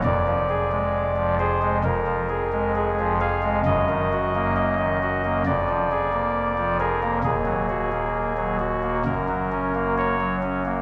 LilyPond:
<<
  \new Staff \with { instrumentName = "Pipe organ" } { \time 4/4 \key ees \minor \tempo 4 = 66 d''4. c''8 bes'4 aes'8 f''8 | ees''4 ees''4 d''4. bes'8 | aes'4. ges'8 bes'4 des''8 r8 | }
  \new Staff \with { instrumentName = "Pipe organ" } { \clef bass \time 4/4 \key ees \minor << { f,16 f16 aes'16 aes8 f16 aes'16 aes16 f,16 f16 aes'16 aes8 f16 aes'16 aes16 | ges,16 ees16 ges'16 bes8 ees16 ges'16 bes16 f,16 f16 aes'16 bes8 f16 aes'16 bes16 | ees,16 ges16 ges'16 bes8 ges16 r16 bes16 ges,16 ges16 des'16 bes8 ges16 des'16 bes16 | } \\ { f,,2 f,,2 | ges,,2 f,,2 | ees,,2 ges,,2 | } >> }
>>